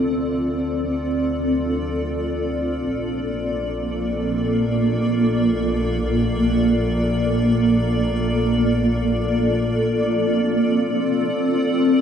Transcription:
Already playing: double bass section D2, ambient pad C4 F4 A4 D5
2.84 double bass section A#1, ambient pad A#3
9.86 ambient pad C4

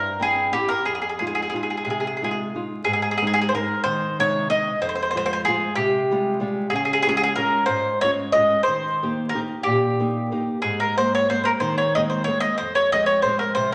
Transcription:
Already playing: nylon-string guitar G2, mandolin A#4
0.20 nylon-string guitar C4 E4 G5, mandolin G#4
0.53 nylon-string guitar C4 E4 G4, mandolin G4
0.69 mandolin A#4
0.85 nylon-string guitar F2, mandolin G#4
0.95 mandolin G#4
1.02 mandolin G#4
1.09 mandolin G#4
1.19 nylon-string guitar G#3 D#4 F4, mandolin G#4
1.27 mandolin G#4
1.35 mandolin G#4
1.42 mandolin G#4
1.50 nylon-string guitar G#3 D#4, mandolin G#4
1.54 nylon-string guitar F4, mandolin G#4
1.63 mandolin G#4
1.70 mandolin G#4
1.77 mandolin G#4
1.85 nylon-string guitar C3, mandolin G#4
1.90 mandolin G#4
2.00 mandolin G#4
2.07 mandolin G#4
2.17 mandolin G#4
2.22 nylon-string guitar G#3 D#4 F4, mandolin G#4
2.31 mandolin G#4
2.55 nylon-string guitar G#3 D#4 F4
2.84 nylon-string guitar G#2, mandolin G#4
2.93 mandolin G#4
3.02 mandolin G#4
3.11 mandolin G#4
3.18 mandolin G#4
3.22 nylon-string guitar G#3 C4 D#4
3.27 mandolin G#4
3.34 mandolin G#4
3.42 mandolin G#4
3.49 mandolin C5
3.53 nylon-string guitar G#3 C4 D#4, mandolin A#4
3.84 nylon-string guitar D#3, mandolin C5
4.19 nylon-string guitar C3 G#3 D#4, mandolin C#5
4.49 nylon-string guitar G#3 C4 D#4, mandolin D#5
4.81 nylon-string guitar F2, mandolin C5
4.89 mandolin C5
4.95 mandolin C5
5.03 mandolin C5
5.11 nylon-string guitar F3, mandolin C5
5.15 nylon-string guitar G#3 F4, mandolin C5
5.26 mandolin C5
5.33 mandolin C5
5.45 nylon-string guitar G#3 F4, mandolin G#4
5.76 nylon-string guitar C3, mandolin G4
6.11 nylon-string guitar G3 G#3 F4
6.40 nylon-string guitar G3 G#3 F4
6.70 nylon-string guitar C#3, mandolin G#4
6.76 mandolin G#4
6.85 mandolin G#4
6.93 mandolin G#4
7.03 nylon-string guitar G#3, mandolin G#4
7.07 nylon-string guitar C#4 F4, mandolin G#4
7.17 mandolin G#4
7.24 mandolin G#4
7.36 nylon-string guitar G#3 C#4 F4, mandolin A#4
7.66 nylon-string guitar G#2, mandolin C5
8.01 nylon-string guitar G#3 C#4 F4, mandolin C#5
8.32 nylon-string guitar G#3 C#4 F4, mandolin D#5
8.63 mandolin C5
8.67 nylon-string guitar D#3
9.03 nylon-string guitar A#3 D#4 G4
9.29 mandolin A#4
9.34 nylon-string guitar A#3 D#4 G4
9.63 nylon-string guitar A#2, mandolin G4
10.00 nylon-string guitar A#3 D#4 G4
10.32 nylon-string guitar A#3 D#4 G4
10.62 nylon-string guitar G#2, mandolin G#4
10.80 mandolin A#4
10.98 nylon-string guitar G#3 A#3 C4, mandolin C5
11.15 mandolin C#5
11.30 nylon-string guitar G#3 A#3 C4, mandolin C5
11.44 mandolin A#4 C5
11.60 nylon-string guitar D#3, mandolin C5
11.78 mandolin C#5
11.95 nylon-string guitar G#3 A#3 C4, mandolin D#5
12.10 mandolin C5
12.24 nylon-string guitar G#3 A#3 C4, mandolin C#5
12.40 mandolin D#5
12.58 nylon-string guitar F2, mandolin C5
12.75 mandolin C#5
12.92 nylon-string guitar F3 G#3 C4, mandolin D#5
13.06 mandolin C#5
13.22 nylon-string guitar F3 G#3 C4, mandolin C5
13.39 mandolin A#4
13.55 nylon-string guitar C3, mandolin C5

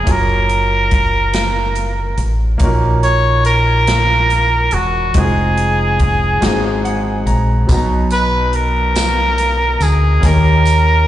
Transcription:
Already playing: trumpet G#4
0.03 fingered electric bass F#1, grand piano A#3 C#4 F4, kick, closed hi-hat
0.09 grand piano F#4 A#4, trumpet A#4
0.49 closed hi-hat
0.91 kick, closed hi-hat
1.34 snare, closed hi-hat
1.75 closed hi-hat
2.18 fingered electric bass A1, closed hi-hat
2.58 fingered electric bass A#1, grand piano A#3 C#4 D#4, kick, closed hi-hat
2.62 grand piano A#2 F#4 A#4
3.03 trumpet C#5, closed hi-hat
3.45 trumpet A#4, closed hi-hat
3.87 snare, closed hi-hat
4.30 closed hi-hat
4.71 fingered electric bass E1, trumpet F#4, closed hi-hat
5.14 fingered electric bass F1, grand piano G#3 C4 D#4 F4 F#4, trumpet G#4, kick, closed hi-hat
5.24 grand piano G#4
5.57 closed hi-hat
6.00 kick, closed hi-hat
6.41 fingered electric bass G#1, grand piano G#2 G#3 A#3 D#4 F#4 G#4, snare, closed hi-hat
6.48 grand piano C4
6.85 grand piano F#5, closed hi-hat
7.26 fingered electric bass A#1, grand piano A#5, closed hi-hat
7.67 fingered electric bass B1, grand piano B2 F#3 B3 D#4, kick, closed hi-hat, tambourine
7.73 grand piano F#4 A#5
8.11 trumpet B4, closed hi-hat, tambourine
8.53 trumpet A#4, closed hi-hat
8.96 snare, closed hi-hat, tambourine
9.38 closed hi-hat
9.80 fingered electric bass D2, trumpet G#4, closed hi-hat, tambourine
10.20 fingered electric bass D#2, grand piano D#3 A#3 C#4, kick, closed hi-hat, tambourine
10.24 grand piano D#4 G4 A#4, trumpet A#4
10.65 closed hi-hat, tambourine

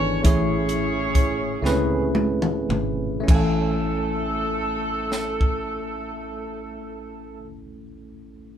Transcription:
Already playing: fingered electric bass G#1, tine electric piano B3 D4 E4 G#4 A4 C#5, horn section C#4 C#5
0.23 fingered electric bass A1, tine electric piano A2 A3 C#4 E4 G#4, horn section C#4 E4 G#4 C#5, kick, closed hi-hat
0.28 tine electric piano C#5
0.69 closed hi-hat
1.15 kick, closed hi-hat
1.62 fingered electric bass C#2, tine electric piano A3 C4 E4 G#4, snare
1.66 tine electric piano C#4 B4
2.15 high tom
2.42 mid tom
2.69 fingered electric bass G#1, mid tom
3.20 tine electric piano A3 C#4
3.27 tine electric piano A1 E4 G#5, fingered electric bass A1, horn section A3 A4, kick, crash
3.35 tine electric piano A4
5.12 snare
5.41 kick

